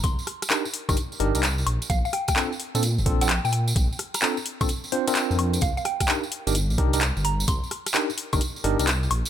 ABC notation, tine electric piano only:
X:1
M:4/4
L:1/16
Q:"Swing 16ths" 1/4=129
K:Cdor
V:1 name="Tine electric piano"
z4 [DEGB] z2 [DEGB] z2 [DEGB] [DEGB] z4 | z4 [CDFA] z2 [CDFA] z2 [CDFA] [CDFA] z4 | z4 [CDFA] z2 [CDFA] z2 [CDFc] [CDFB]4- [CDFB] | z4 [DEGB] z2 [DEGB] z2 [DEGB] [DEGB] z4 |
z4 [DEGB] z2 [DEGB] z2 [DEGB] [DEGB] z4 |]